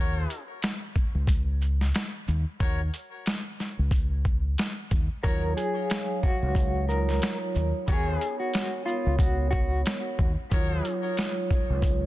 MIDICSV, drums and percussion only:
0, 0, Header, 1, 2, 480
1, 0, Start_track
1, 0, Key_signature, -6, "minor"
1, 0, Tempo, 659341
1, 1896, Time_signature, 4, 2, 24, 8
1, 8780, End_track
2, 0, Start_track
2, 0, Title_t, "Drums"
2, 220, Note_on_c, 9, 42, 56
2, 220, Note_on_c, 9, 82, 57
2, 293, Note_off_c, 9, 42, 0
2, 293, Note_off_c, 9, 82, 0
2, 455, Note_on_c, 9, 42, 76
2, 464, Note_on_c, 9, 38, 116
2, 527, Note_off_c, 9, 42, 0
2, 537, Note_off_c, 9, 38, 0
2, 696, Note_on_c, 9, 36, 83
2, 700, Note_on_c, 9, 82, 58
2, 769, Note_off_c, 9, 36, 0
2, 773, Note_off_c, 9, 82, 0
2, 927, Note_on_c, 9, 36, 89
2, 936, Note_on_c, 9, 42, 103
2, 1000, Note_off_c, 9, 36, 0
2, 1009, Note_off_c, 9, 42, 0
2, 1175, Note_on_c, 9, 82, 45
2, 1248, Note_off_c, 9, 82, 0
2, 1319, Note_on_c, 9, 38, 37
2, 1392, Note_off_c, 9, 38, 0
2, 1416, Note_on_c, 9, 42, 70
2, 1424, Note_on_c, 9, 38, 124
2, 1489, Note_off_c, 9, 42, 0
2, 1497, Note_off_c, 9, 38, 0
2, 1656, Note_on_c, 9, 82, 56
2, 1728, Note_off_c, 9, 82, 0
2, 1895, Note_on_c, 9, 36, 121
2, 1897, Note_on_c, 9, 42, 99
2, 1968, Note_off_c, 9, 36, 0
2, 1969, Note_off_c, 9, 42, 0
2, 2138, Note_on_c, 9, 42, 56
2, 2138, Note_on_c, 9, 82, 57
2, 2211, Note_off_c, 9, 42, 0
2, 2211, Note_off_c, 9, 82, 0
2, 2373, Note_on_c, 9, 42, 77
2, 2383, Note_on_c, 9, 38, 118
2, 2446, Note_off_c, 9, 42, 0
2, 2456, Note_off_c, 9, 38, 0
2, 2619, Note_on_c, 9, 82, 57
2, 2622, Note_on_c, 9, 38, 37
2, 2692, Note_off_c, 9, 82, 0
2, 2695, Note_off_c, 9, 38, 0
2, 2847, Note_on_c, 9, 36, 94
2, 2856, Note_on_c, 9, 42, 105
2, 2920, Note_off_c, 9, 36, 0
2, 2928, Note_off_c, 9, 42, 0
2, 3095, Note_on_c, 9, 36, 92
2, 3095, Note_on_c, 9, 82, 45
2, 3167, Note_off_c, 9, 36, 0
2, 3168, Note_off_c, 9, 82, 0
2, 3336, Note_on_c, 9, 42, 71
2, 3344, Note_on_c, 9, 38, 123
2, 3409, Note_off_c, 9, 42, 0
2, 3417, Note_off_c, 9, 38, 0
2, 3575, Note_on_c, 9, 42, 56
2, 3575, Note_on_c, 9, 82, 58
2, 3577, Note_on_c, 9, 36, 97
2, 3648, Note_off_c, 9, 42, 0
2, 3648, Note_off_c, 9, 82, 0
2, 3650, Note_off_c, 9, 36, 0
2, 3815, Note_on_c, 9, 36, 121
2, 3817, Note_on_c, 9, 42, 95
2, 3888, Note_off_c, 9, 36, 0
2, 3890, Note_off_c, 9, 42, 0
2, 4059, Note_on_c, 9, 42, 58
2, 4059, Note_on_c, 9, 82, 57
2, 4132, Note_off_c, 9, 42, 0
2, 4132, Note_off_c, 9, 82, 0
2, 4294, Note_on_c, 9, 42, 74
2, 4304, Note_on_c, 9, 38, 114
2, 4367, Note_off_c, 9, 42, 0
2, 4377, Note_off_c, 9, 38, 0
2, 4537, Note_on_c, 9, 36, 84
2, 4541, Note_on_c, 9, 82, 58
2, 4610, Note_off_c, 9, 36, 0
2, 4614, Note_off_c, 9, 82, 0
2, 4768, Note_on_c, 9, 36, 89
2, 4778, Note_on_c, 9, 42, 105
2, 4841, Note_off_c, 9, 36, 0
2, 4850, Note_off_c, 9, 42, 0
2, 5017, Note_on_c, 9, 82, 46
2, 5090, Note_off_c, 9, 82, 0
2, 5159, Note_on_c, 9, 38, 36
2, 5232, Note_off_c, 9, 38, 0
2, 5256, Note_on_c, 9, 42, 73
2, 5264, Note_on_c, 9, 38, 118
2, 5329, Note_off_c, 9, 42, 0
2, 5337, Note_off_c, 9, 38, 0
2, 5497, Note_on_c, 9, 82, 59
2, 5570, Note_off_c, 9, 82, 0
2, 5736, Note_on_c, 9, 36, 120
2, 5738, Note_on_c, 9, 42, 100
2, 5808, Note_off_c, 9, 36, 0
2, 5811, Note_off_c, 9, 42, 0
2, 5979, Note_on_c, 9, 42, 58
2, 5979, Note_on_c, 9, 82, 56
2, 6052, Note_off_c, 9, 42, 0
2, 6052, Note_off_c, 9, 82, 0
2, 6214, Note_on_c, 9, 42, 74
2, 6224, Note_on_c, 9, 38, 119
2, 6287, Note_off_c, 9, 42, 0
2, 6297, Note_off_c, 9, 38, 0
2, 6461, Note_on_c, 9, 82, 58
2, 6533, Note_off_c, 9, 82, 0
2, 6688, Note_on_c, 9, 36, 96
2, 6697, Note_on_c, 9, 42, 108
2, 6761, Note_off_c, 9, 36, 0
2, 6770, Note_off_c, 9, 42, 0
2, 6935, Note_on_c, 9, 36, 98
2, 6936, Note_on_c, 9, 82, 44
2, 7008, Note_off_c, 9, 36, 0
2, 7009, Note_off_c, 9, 82, 0
2, 7176, Note_on_c, 9, 42, 70
2, 7184, Note_on_c, 9, 38, 120
2, 7249, Note_off_c, 9, 42, 0
2, 7257, Note_off_c, 9, 38, 0
2, 7416, Note_on_c, 9, 82, 58
2, 7417, Note_on_c, 9, 36, 100
2, 7489, Note_off_c, 9, 82, 0
2, 7490, Note_off_c, 9, 36, 0
2, 7655, Note_on_c, 9, 36, 122
2, 7657, Note_on_c, 9, 42, 100
2, 7728, Note_off_c, 9, 36, 0
2, 7730, Note_off_c, 9, 42, 0
2, 7899, Note_on_c, 9, 42, 55
2, 7899, Note_on_c, 9, 82, 57
2, 7971, Note_off_c, 9, 42, 0
2, 7971, Note_off_c, 9, 82, 0
2, 8134, Note_on_c, 9, 42, 76
2, 8143, Note_on_c, 9, 38, 116
2, 8206, Note_off_c, 9, 42, 0
2, 8216, Note_off_c, 9, 38, 0
2, 8376, Note_on_c, 9, 36, 84
2, 8380, Note_on_c, 9, 82, 58
2, 8449, Note_off_c, 9, 36, 0
2, 8453, Note_off_c, 9, 82, 0
2, 8607, Note_on_c, 9, 36, 94
2, 8616, Note_on_c, 9, 42, 109
2, 8680, Note_off_c, 9, 36, 0
2, 8689, Note_off_c, 9, 42, 0
2, 8780, End_track
0, 0, End_of_file